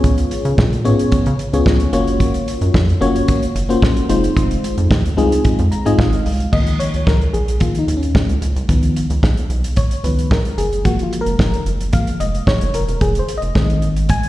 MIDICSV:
0, 0, Header, 1, 4, 480
1, 0, Start_track
1, 0, Key_signature, -5, "major"
1, 0, Tempo, 540541
1, 36, Time_signature, 4, 2, 24, 8
1, 12688, End_track
2, 0, Start_track
2, 0, Title_t, "FM electric piano"
2, 0, Program_c, 0, 5
2, 0, Note_on_c, 0, 59, 93
2, 0, Note_on_c, 0, 61, 97
2, 0, Note_on_c, 0, 65, 95
2, 0, Note_on_c, 0, 68, 93
2, 0, Note_on_c, 0, 73, 105
2, 563, Note_off_c, 0, 59, 0
2, 564, Note_off_c, 0, 61, 0
2, 565, Note_off_c, 0, 65, 0
2, 566, Note_off_c, 0, 68, 0
2, 566, Note_off_c, 0, 73, 0
2, 751, Note_on_c, 0, 59, 97
2, 752, Note_on_c, 0, 61, 91
2, 755, Note_on_c, 0, 65, 85
2, 755, Note_on_c, 0, 68, 85
2, 758, Note_on_c, 0, 73, 114
2, 1136, Note_off_c, 0, 59, 0
2, 1137, Note_off_c, 0, 61, 0
2, 1138, Note_off_c, 0, 65, 0
2, 1138, Note_off_c, 0, 68, 0
2, 1140, Note_off_c, 0, 73, 0
2, 1361, Note_on_c, 0, 59, 90
2, 1361, Note_on_c, 0, 61, 86
2, 1363, Note_on_c, 0, 65, 86
2, 1366, Note_on_c, 0, 68, 86
2, 1367, Note_on_c, 0, 73, 103
2, 1701, Note_off_c, 0, 61, 0
2, 1703, Note_off_c, 0, 65, 0
2, 1708, Note_off_c, 0, 73, 0
2, 1711, Note_on_c, 0, 58, 105
2, 1712, Note_on_c, 0, 61, 84
2, 1713, Note_on_c, 0, 65, 89
2, 1715, Note_off_c, 0, 59, 0
2, 1715, Note_on_c, 0, 66, 94
2, 1717, Note_off_c, 0, 68, 0
2, 1719, Note_on_c, 0, 73, 111
2, 2484, Note_off_c, 0, 58, 0
2, 2485, Note_off_c, 0, 61, 0
2, 2485, Note_off_c, 0, 65, 0
2, 2486, Note_off_c, 0, 66, 0
2, 2488, Note_off_c, 0, 73, 0
2, 2671, Note_on_c, 0, 58, 107
2, 2673, Note_on_c, 0, 61, 102
2, 2676, Note_on_c, 0, 65, 85
2, 2676, Note_on_c, 0, 66, 97
2, 2677, Note_on_c, 0, 73, 123
2, 3056, Note_off_c, 0, 58, 0
2, 3057, Note_off_c, 0, 61, 0
2, 3059, Note_off_c, 0, 65, 0
2, 3059, Note_off_c, 0, 66, 0
2, 3060, Note_off_c, 0, 73, 0
2, 3276, Note_on_c, 0, 58, 100
2, 3279, Note_on_c, 0, 61, 92
2, 3280, Note_on_c, 0, 65, 88
2, 3282, Note_on_c, 0, 66, 86
2, 3285, Note_on_c, 0, 72, 101
2, 3626, Note_off_c, 0, 65, 0
2, 3630, Note_off_c, 0, 72, 0
2, 3632, Note_off_c, 0, 58, 0
2, 3633, Note_on_c, 0, 56, 94
2, 3634, Note_off_c, 0, 61, 0
2, 3634, Note_on_c, 0, 60, 94
2, 3635, Note_off_c, 0, 66, 0
2, 3636, Note_on_c, 0, 63, 93
2, 3636, Note_on_c, 0, 65, 95
2, 3640, Note_on_c, 0, 72, 112
2, 4405, Note_off_c, 0, 56, 0
2, 4406, Note_off_c, 0, 60, 0
2, 4407, Note_off_c, 0, 63, 0
2, 4407, Note_off_c, 0, 65, 0
2, 4409, Note_off_c, 0, 72, 0
2, 4591, Note_on_c, 0, 56, 104
2, 4592, Note_on_c, 0, 60, 92
2, 4594, Note_on_c, 0, 63, 90
2, 4597, Note_on_c, 0, 65, 96
2, 4598, Note_on_c, 0, 68, 115
2, 4977, Note_off_c, 0, 56, 0
2, 4977, Note_off_c, 0, 60, 0
2, 4978, Note_off_c, 0, 63, 0
2, 4979, Note_off_c, 0, 65, 0
2, 4980, Note_off_c, 0, 68, 0
2, 5075, Note_on_c, 0, 82, 67
2, 5194, Note_off_c, 0, 82, 0
2, 5199, Note_on_c, 0, 56, 99
2, 5202, Note_on_c, 0, 60, 84
2, 5202, Note_on_c, 0, 63, 88
2, 5202, Note_on_c, 0, 80, 73
2, 5204, Note_on_c, 0, 65, 92
2, 5206, Note_on_c, 0, 75, 105
2, 5307, Note_off_c, 0, 80, 0
2, 5315, Note_on_c, 0, 77, 75
2, 5571, Note_off_c, 0, 56, 0
2, 5573, Note_off_c, 0, 60, 0
2, 5573, Note_off_c, 0, 63, 0
2, 5574, Note_off_c, 0, 65, 0
2, 5575, Note_off_c, 0, 75, 0
2, 5762, Note_off_c, 0, 77, 0
2, 5788, Note_on_c, 0, 51, 59
2, 5793, Note_on_c, 0, 53, 52
2, 5795, Note_on_c, 0, 75, 107
2, 5799, Note_on_c, 0, 58, 67
2, 6019, Note_off_c, 0, 75, 0
2, 6034, Note_on_c, 0, 73, 99
2, 6276, Note_on_c, 0, 70, 106
2, 6282, Note_off_c, 0, 73, 0
2, 6384, Note_off_c, 0, 70, 0
2, 6477, Note_off_c, 0, 51, 0
2, 6479, Note_off_c, 0, 53, 0
2, 6482, Note_off_c, 0, 58, 0
2, 6512, Note_on_c, 0, 68, 89
2, 6753, Note_on_c, 0, 51, 50
2, 6754, Note_on_c, 0, 53, 49
2, 6756, Note_on_c, 0, 65, 84
2, 6759, Note_on_c, 0, 58, 55
2, 6761, Note_off_c, 0, 68, 0
2, 6916, Note_on_c, 0, 63, 84
2, 6920, Note_off_c, 0, 65, 0
2, 6970, Note_off_c, 0, 51, 0
2, 6971, Note_off_c, 0, 53, 0
2, 6973, Note_off_c, 0, 58, 0
2, 7077, Note_on_c, 0, 61, 80
2, 7080, Note_off_c, 0, 63, 0
2, 7523, Note_off_c, 0, 61, 0
2, 7712, Note_on_c, 0, 51, 61
2, 7717, Note_on_c, 0, 53, 59
2, 7723, Note_on_c, 0, 59, 68
2, 8039, Note_off_c, 0, 51, 0
2, 8041, Note_off_c, 0, 53, 0
2, 8044, Note_off_c, 0, 59, 0
2, 8676, Note_on_c, 0, 73, 98
2, 8915, Note_on_c, 0, 51, 47
2, 8917, Note_on_c, 0, 71, 79
2, 8920, Note_on_c, 0, 53, 46
2, 8922, Note_on_c, 0, 59, 56
2, 8923, Note_off_c, 0, 73, 0
2, 9131, Note_off_c, 0, 51, 0
2, 9134, Note_off_c, 0, 53, 0
2, 9135, Note_off_c, 0, 59, 0
2, 9156, Note_on_c, 0, 70, 89
2, 9163, Note_off_c, 0, 71, 0
2, 9393, Note_on_c, 0, 68, 90
2, 9403, Note_off_c, 0, 70, 0
2, 9629, Note_on_c, 0, 53, 63
2, 9635, Note_on_c, 0, 56, 60
2, 9636, Note_on_c, 0, 66, 95
2, 9641, Note_on_c, 0, 58, 75
2, 9642, Note_off_c, 0, 68, 0
2, 9795, Note_on_c, 0, 65, 83
2, 9800, Note_off_c, 0, 66, 0
2, 9867, Note_off_c, 0, 65, 0
2, 9955, Note_on_c, 0, 70, 96
2, 10402, Note_off_c, 0, 70, 0
2, 10580, Note_off_c, 0, 53, 0
2, 10584, Note_off_c, 0, 56, 0
2, 10587, Note_off_c, 0, 58, 0
2, 10591, Note_on_c, 0, 53, 55
2, 10595, Note_on_c, 0, 56, 46
2, 10595, Note_on_c, 0, 77, 89
2, 10598, Note_on_c, 0, 58, 50
2, 10809, Note_off_c, 0, 53, 0
2, 10811, Note_off_c, 0, 56, 0
2, 10813, Note_off_c, 0, 58, 0
2, 10819, Note_off_c, 0, 77, 0
2, 10834, Note_on_c, 0, 75, 89
2, 11058, Note_off_c, 0, 75, 0
2, 11076, Note_on_c, 0, 73, 108
2, 11319, Note_on_c, 0, 70, 90
2, 11323, Note_off_c, 0, 73, 0
2, 11540, Note_off_c, 0, 70, 0
2, 11555, Note_on_c, 0, 68, 97
2, 11715, Note_on_c, 0, 72, 90
2, 11720, Note_off_c, 0, 68, 0
2, 11864, Note_off_c, 0, 72, 0
2, 11878, Note_on_c, 0, 75, 99
2, 12032, Note_on_c, 0, 51, 68
2, 12036, Note_on_c, 0, 56, 59
2, 12041, Note_on_c, 0, 60, 66
2, 12323, Note_off_c, 0, 75, 0
2, 12522, Note_on_c, 0, 80, 117
2, 12683, Note_off_c, 0, 80, 0
2, 12688, Note_off_c, 0, 51, 0
2, 12688, Note_off_c, 0, 56, 0
2, 12688, Note_off_c, 0, 60, 0
2, 12688, End_track
3, 0, Start_track
3, 0, Title_t, "Analog synth bass"
3, 0, Program_c, 1, 38
3, 35, Note_on_c, 1, 37, 110
3, 219, Note_off_c, 1, 37, 0
3, 400, Note_on_c, 1, 49, 102
3, 487, Note_off_c, 1, 49, 0
3, 516, Note_on_c, 1, 46, 95
3, 755, Note_on_c, 1, 44, 91
3, 769, Note_off_c, 1, 46, 0
3, 940, Note_off_c, 1, 44, 0
3, 997, Note_on_c, 1, 49, 47
3, 1048, Note_off_c, 1, 49, 0
3, 1123, Note_on_c, 1, 49, 112
3, 1209, Note_off_c, 1, 49, 0
3, 1360, Note_on_c, 1, 37, 90
3, 1448, Note_off_c, 1, 37, 0
3, 1473, Note_on_c, 1, 37, 98
3, 1658, Note_off_c, 1, 37, 0
3, 1714, Note_on_c, 1, 30, 94
3, 2083, Note_off_c, 1, 30, 0
3, 2321, Note_on_c, 1, 42, 95
3, 2408, Note_off_c, 1, 42, 0
3, 2436, Note_on_c, 1, 41, 81
3, 2620, Note_off_c, 1, 41, 0
3, 2671, Note_on_c, 1, 30, 93
3, 2857, Note_off_c, 1, 30, 0
3, 3150, Note_on_c, 1, 30, 99
3, 3337, Note_off_c, 1, 30, 0
3, 3395, Note_on_c, 1, 34, 90
3, 3579, Note_off_c, 1, 34, 0
3, 3630, Note_on_c, 1, 29, 94
3, 3816, Note_off_c, 1, 29, 0
3, 3878, Note_on_c, 1, 29, 113
3, 4061, Note_off_c, 1, 29, 0
3, 4240, Note_on_c, 1, 41, 107
3, 4328, Note_off_c, 1, 41, 0
3, 4356, Note_on_c, 1, 39, 96
3, 4540, Note_off_c, 1, 39, 0
3, 4597, Note_on_c, 1, 36, 94
3, 4781, Note_off_c, 1, 36, 0
3, 4839, Note_on_c, 1, 41, 51
3, 4889, Note_off_c, 1, 41, 0
3, 4964, Note_on_c, 1, 41, 111
3, 5050, Note_off_c, 1, 41, 0
3, 5207, Note_on_c, 1, 44, 88
3, 5292, Note_off_c, 1, 44, 0
3, 5315, Note_on_c, 1, 32, 104
3, 5499, Note_off_c, 1, 32, 0
3, 5558, Note_on_c, 1, 36, 94
3, 5741, Note_off_c, 1, 36, 0
3, 5796, Note_on_c, 1, 37, 102
3, 5980, Note_off_c, 1, 37, 0
3, 6165, Note_on_c, 1, 37, 83
3, 6251, Note_off_c, 1, 37, 0
3, 6276, Note_on_c, 1, 37, 96
3, 6460, Note_off_c, 1, 37, 0
3, 6516, Note_on_c, 1, 34, 99
3, 6798, Note_off_c, 1, 34, 0
3, 6992, Note_on_c, 1, 39, 83
3, 7178, Note_off_c, 1, 39, 0
3, 7362, Note_on_c, 1, 37, 88
3, 7449, Note_off_c, 1, 37, 0
3, 7472, Note_on_c, 1, 37, 95
3, 7571, Note_off_c, 1, 37, 0
3, 7600, Note_on_c, 1, 36, 105
3, 7688, Note_off_c, 1, 36, 0
3, 7715, Note_on_c, 1, 37, 116
3, 7899, Note_off_c, 1, 37, 0
3, 8081, Note_on_c, 1, 37, 109
3, 8168, Note_off_c, 1, 37, 0
3, 8195, Note_on_c, 1, 35, 82
3, 8380, Note_off_c, 1, 35, 0
3, 8430, Note_on_c, 1, 35, 94
3, 8714, Note_off_c, 1, 35, 0
3, 8914, Note_on_c, 1, 37, 88
3, 9099, Note_off_c, 1, 37, 0
3, 9393, Note_on_c, 1, 30, 90
3, 9763, Note_off_c, 1, 30, 0
3, 10000, Note_on_c, 1, 30, 91
3, 10088, Note_off_c, 1, 30, 0
3, 10115, Note_on_c, 1, 30, 83
3, 10299, Note_off_c, 1, 30, 0
3, 10352, Note_on_c, 1, 30, 87
3, 10635, Note_off_c, 1, 30, 0
3, 10834, Note_on_c, 1, 29, 88
3, 11019, Note_off_c, 1, 29, 0
3, 11201, Note_on_c, 1, 30, 96
3, 11289, Note_off_c, 1, 30, 0
3, 11314, Note_on_c, 1, 29, 109
3, 11412, Note_off_c, 1, 29, 0
3, 11440, Note_on_c, 1, 28, 110
3, 11528, Note_off_c, 1, 28, 0
3, 11555, Note_on_c, 1, 29, 104
3, 11739, Note_off_c, 1, 29, 0
3, 11921, Note_on_c, 1, 29, 86
3, 12009, Note_off_c, 1, 29, 0
3, 12034, Note_on_c, 1, 34, 89
3, 12271, Note_on_c, 1, 32, 83
3, 12285, Note_off_c, 1, 34, 0
3, 12555, Note_off_c, 1, 32, 0
3, 12688, End_track
4, 0, Start_track
4, 0, Title_t, "Drums"
4, 35, Note_on_c, 9, 42, 89
4, 36, Note_on_c, 9, 36, 109
4, 123, Note_off_c, 9, 42, 0
4, 124, Note_off_c, 9, 36, 0
4, 158, Note_on_c, 9, 42, 57
4, 247, Note_off_c, 9, 42, 0
4, 277, Note_on_c, 9, 42, 84
4, 366, Note_off_c, 9, 42, 0
4, 400, Note_on_c, 9, 42, 46
4, 489, Note_off_c, 9, 42, 0
4, 516, Note_on_c, 9, 36, 120
4, 522, Note_on_c, 9, 38, 119
4, 605, Note_off_c, 9, 36, 0
4, 611, Note_off_c, 9, 38, 0
4, 646, Note_on_c, 9, 42, 45
4, 735, Note_off_c, 9, 42, 0
4, 757, Note_on_c, 9, 42, 59
4, 846, Note_off_c, 9, 42, 0
4, 883, Note_on_c, 9, 42, 60
4, 971, Note_off_c, 9, 42, 0
4, 992, Note_on_c, 9, 42, 86
4, 997, Note_on_c, 9, 36, 122
4, 1081, Note_off_c, 9, 42, 0
4, 1086, Note_off_c, 9, 36, 0
4, 1118, Note_on_c, 9, 42, 52
4, 1207, Note_off_c, 9, 42, 0
4, 1236, Note_on_c, 9, 42, 71
4, 1325, Note_off_c, 9, 42, 0
4, 1364, Note_on_c, 9, 42, 55
4, 1452, Note_off_c, 9, 42, 0
4, 1474, Note_on_c, 9, 36, 117
4, 1480, Note_on_c, 9, 38, 125
4, 1562, Note_off_c, 9, 36, 0
4, 1569, Note_off_c, 9, 38, 0
4, 1597, Note_on_c, 9, 42, 56
4, 1686, Note_off_c, 9, 42, 0
4, 1714, Note_on_c, 9, 42, 78
4, 1803, Note_off_c, 9, 42, 0
4, 1843, Note_on_c, 9, 42, 49
4, 1931, Note_off_c, 9, 42, 0
4, 1955, Note_on_c, 9, 36, 98
4, 1955, Note_on_c, 9, 42, 83
4, 2044, Note_off_c, 9, 36, 0
4, 2044, Note_off_c, 9, 42, 0
4, 2080, Note_on_c, 9, 42, 60
4, 2169, Note_off_c, 9, 42, 0
4, 2200, Note_on_c, 9, 42, 78
4, 2289, Note_off_c, 9, 42, 0
4, 2321, Note_on_c, 9, 42, 52
4, 2410, Note_off_c, 9, 42, 0
4, 2436, Note_on_c, 9, 36, 115
4, 2441, Note_on_c, 9, 38, 113
4, 2524, Note_off_c, 9, 36, 0
4, 2530, Note_off_c, 9, 38, 0
4, 2567, Note_on_c, 9, 42, 43
4, 2656, Note_off_c, 9, 42, 0
4, 2678, Note_on_c, 9, 42, 58
4, 2767, Note_off_c, 9, 42, 0
4, 2804, Note_on_c, 9, 42, 67
4, 2893, Note_off_c, 9, 42, 0
4, 2914, Note_on_c, 9, 42, 93
4, 2917, Note_on_c, 9, 36, 110
4, 3003, Note_off_c, 9, 42, 0
4, 3006, Note_off_c, 9, 36, 0
4, 3043, Note_on_c, 9, 42, 54
4, 3131, Note_off_c, 9, 42, 0
4, 3159, Note_on_c, 9, 42, 81
4, 3248, Note_off_c, 9, 42, 0
4, 3288, Note_on_c, 9, 42, 54
4, 3377, Note_off_c, 9, 42, 0
4, 3396, Note_on_c, 9, 36, 127
4, 3405, Note_on_c, 9, 38, 127
4, 3485, Note_off_c, 9, 36, 0
4, 3493, Note_off_c, 9, 38, 0
4, 3522, Note_on_c, 9, 42, 55
4, 3611, Note_off_c, 9, 42, 0
4, 3636, Note_on_c, 9, 42, 84
4, 3725, Note_off_c, 9, 42, 0
4, 3765, Note_on_c, 9, 42, 58
4, 3854, Note_off_c, 9, 42, 0
4, 3877, Note_on_c, 9, 36, 108
4, 3878, Note_on_c, 9, 42, 92
4, 3965, Note_off_c, 9, 36, 0
4, 3967, Note_off_c, 9, 42, 0
4, 4004, Note_on_c, 9, 42, 58
4, 4093, Note_off_c, 9, 42, 0
4, 4122, Note_on_c, 9, 42, 86
4, 4210, Note_off_c, 9, 42, 0
4, 4242, Note_on_c, 9, 42, 49
4, 4331, Note_off_c, 9, 42, 0
4, 4357, Note_on_c, 9, 36, 127
4, 4363, Note_on_c, 9, 38, 111
4, 4446, Note_off_c, 9, 36, 0
4, 4452, Note_off_c, 9, 38, 0
4, 4489, Note_on_c, 9, 42, 49
4, 4578, Note_off_c, 9, 42, 0
4, 4602, Note_on_c, 9, 42, 54
4, 4691, Note_off_c, 9, 42, 0
4, 4726, Note_on_c, 9, 42, 64
4, 4815, Note_off_c, 9, 42, 0
4, 4835, Note_on_c, 9, 42, 88
4, 4839, Note_on_c, 9, 36, 120
4, 4924, Note_off_c, 9, 42, 0
4, 4928, Note_off_c, 9, 36, 0
4, 4961, Note_on_c, 9, 42, 58
4, 5050, Note_off_c, 9, 42, 0
4, 5078, Note_on_c, 9, 42, 73
4, 5167, Note_off_c, 9, 42, 0
4, 5206, Note_on_c, 9, 42, 56
4, 5295, Note_off_c, 9, 42, 0
4, 5316, Note_on_c, 9, 36, 127
4, 5324, Note_on_c, 9, 38, 127
4, 5405, Note_off_c, 9, 36, 0
4, 5413, Note_off_c, 9, 38, 0
4, 5441, Note_on_c, 9, 42, 55
4, 5530, Note_off_c, 9, 42, 0
4, 5558, Note_on_c, 9, 46, 78
4, 5647, Note_off_c, 9, 46, 0
4, 5686, Note_on_c, 9, 42, 49
4, 5774, Note_off_c, 9, 42, 0
4, 5797, Note_on_c, 9, 36, 107
4, 5797, Note_on_c, 9, 49, 91
4, 5886, Note_off_c, 9, 36, 0
4, 5886, Note_off_c, 9, 49, 0
4, 5920, Note_on_c, 9, 42, 53
4, 6009, Note_off_c, 9, 42, 0
4, 6040, Note_on_c, 9, 42, 80
4, 6129, Note_off_c, 9, 42, 0
4, 6162, Note_on_c, 9, 42, 44
4, 6251, Note_off_c, 9, 42, 0
4, 6277, Note_on_c, 9, 36, 123
4, 6282, Note_on_c, 9, 38, 108
4, 6366, Note_off_c, 9, 36, 0
4, 6371, Note_off_c, 9, 38, 0
4, 6407, Note_on_c, 9, 42, 43
4, 6496, Note_off_c, 9, 42, 0
4, 6519, Note_on_c, 9, 42, 56
4, 6607, Note_off_c, 9, 42, 0
4, 6644, Note_on_c, 9, 42, 66
4, 6733, Note_off_c, 9, 42, 0
4, 6751, Note_on_c, 9, 42, 85
4, 6757, Note_on_c, 9, 36, 112
4, 6840, Note_off_c, 9, 42, 0
4, 6846, Note_off_c, 9, 36, 0
4, 6880, Note_on_c, 9, 42, 56
4, 6969, Note_off_c, 9, 42, 0
4, 7000, Note_on_c, 9, 42, 75
4, 7089, Note_off_c, 9, 42, 0
4, 7128, Note_on_c, 9, 42, 55
4, 7217, Note_off_c, 9, 42, 0
4, 7236, Note_on_c, 9, 36, 127
4, 7243, Note_on_c, 9, 38, 119
4, 7325, Note_off_c, 9, 36, 0
4, 7332, Note_off_c, 9, 38, 0
4, 7363, Note_on_c, 9, 42, 53
4, 7452, Note_off_c, 9, 42, 0
4, 7477, Note_on_c, 9, 42, 85
4, 7566, Note_off_c, 9, 42, 0
4, 7604, Note_on_c, 9, 42, 50
4, 7693, Note_off_c, 9, 42, 0
4, 7716, Note_on_c, 9, 36, 109
4, 7717, Note_on_c, 9, 42, 88
4, 7805, Note_off_c, 9, 36, 0
4, 7805, Note_off_c, 9, 42, 0
4, 7839, Note_on_c, 9, 42, 61
4, 7928, Note_off_c, 9, 42, 0
4, 7960, Note_on_c, 9, 42, 81
4, 8049, Note_off_c, 9, 42, 0
4, 8082, Note_on_c, 9, 42, 53
4, 8171, Note_off_c, 9, 42, 0
4, 8196, Note_on_c, 9, 36, 118
4, 8202, Note_on_c, 9, 38, 108
4, 8285, Note_off_c, 9, 36, 0
4, 8291, Note_off_c, 9, 38, 0
4, 8324, Note_on_c, 9, 42, 45
4, 8413, Note_off_c, 9, 42, 0
4, 8436, Note_on_c, 9, 42, 59
4, 8525, Note_off_c, 9, 42, 0
4, 8562, Note_on_c, 9, 42, 68
4, 8651, Note_off_c, 9, 42, 0
4, 8670, Note_on_c, 9, 42, 85
4, 8677, Note_on_c, 9, 36, 114
4, 8759, Note_off_c, 9, 42, 0
4, 8765, Note_off_c, 9, 36, 0
4, 8800, Note_on_c, 9, 42, 60
4, 8888, Note_off_c, 9, 42, 0
4, 8917, Note_on_c, 9, 42, 73
4, 9006, Note_off_c, 9, 42, 0
4, 9046, Note_on_c, 9, 42, 57
4, 9134, Note_off_c, 9, 42, 0
4, 9156, Note_on_c, 9, 36, 122
4, 9164, Note_on_c, 9, 38, 127
4, 9244, Note_off_c, 9, 36, 0
4, 9253, Note_off_c, 9, 38, 0
4, 9281, Note_on_c, 9, 42, 55
4, 9370, Note_off_c, 9, 42, 0
4, 9396, Note_on_c, 9, 42, 80
4, 9485, Note_off_c, 9, 42, 0
4, 9525, Note_on_c, 9, 42, 48
4, 9614, Note_off_c, 9, 42, 0
4, 9636, Note_on_c, 9, 36, 107
4, 9637, Note_on_c, 9, 42, 89
4, 9725, Note_off_c, 9, 36, 0
4, 9726, Note_off_c, 9, 42, 0
4, 9760, Note_on_c, 9, 42, 56
4, 9849, Note_off_c, 9, 42, 0
4, 9881, Note_on_c, 9, 42, 80
4, 9970, Note_off_c, 9, 42, 0
4, 10002, Note_on_c, 9, 42, 52
4, 10091, Note_off_c, 9, 42, 0
4, 10116, Note_on_c, 9, 36, 119
4, 10121, Note_on_c, 9, 38, 111
4, 10204, Note_off_c, 9, 36, 0
4, 10210, Note_off_c, 9, 38, 0
4, 10245, Note_on_c, 9, 42, 46
4, 10333, Note_off_c, 9, 42, 0
4, 10356, Note_on_c, 9, 42, 52
4, 10445, Note_off_c, 9, 42, 0
4, 10484, Note_on_c, 9, 42, 62
4, 10572, Note_off_c, 9, 42, 0
4, 10591, Note_on_c, 9, 42, 94
4, 10597, Note_on_c, 9, 36, 117
4, 10680, Note_off_c, 9, 42, 0
4, 10686, Note_off_c, 9, 36, 0
4, 10720, Note_on_c, 9, 42, 51
4, 10809, Note_off_c, 9, 42, 0
4, 10837, Note_on_c, 9, 42, 77
4, 10925, Note_off_c, 9, 42, 0
4, 10963, Note_on_c, 9, 42, 53
4, 11052, Note_off_c, 9, 42, 0
4, 11074, Note_on_c, 9, 36, 120
4, 11080, Note_on_c, 9, 38, 125
4, 11163, Note_off_c, 9, 36, 0
4, 11169, Note_off_c, 9, 38, 0
4, 11199, Note_on_c, 9, 42, 56
4, 11287, Note_off_c, 9, 42, 0
4, 11313, Note_on_c, 9, 42, 87
4, 11402, Note_off_c, 9, 42, 0
4, 11442, Note_on_c, 9, 42, 51
4, 11531, Note_off_c, 9, 42, 0
4, 11554, Note_on_c, 9, 42, 88
4, 11555, Note_on_c, 9, 36, 115
4, 11642, Note_off_c, 9, 42, 0
4, 11644, Note_off_c, 9, 36, 0
4, 11678, Note_on_c, 9, 42, 56
4, 11767, Note_off_c, 9, 42, 0
4, 11797, Note_on_c, 9, 42, 89
4, 11886, Note_off_c, 9, 42, 0
4, 11918, Note_on_c, 9, 42, 51
4, 12007, Note_off_c, 9, 42, 0
4, 12035, Note_on_c, 9, 36, 121
4, 12039, Note_on_c, 9, 38, 115
4, 12124, Note_off_c, 9, 36, 0
4, 12128, Note_off_c, 9, 38, 0
4, 12164, Note_on_c, 9, 42, 44
4, 12253, Note_off_c, 9, 42, 0
4, 12273, Note_on_c, 9, 42, 59
4, 12362, Note_off_c, 9, 42, 0
4, 12400, Note_on_c, 9, 42, 63
4, 12489, Note_off_c, 9, 42, 0
4, 12511, Note_on_c, 9, 42, 98
4, 12517, Note_on_c, 9, 36, 119
4, 12600, Note_off_c, 9, 42, 0
4, 12606, Note_off_c, 9, 36, 0
4, 12639, Note_on_c, 9, 42, 54
4, 12688, Note_off_c, 9, 42, 0
4, 12688, End_track
0, 0, End_of_file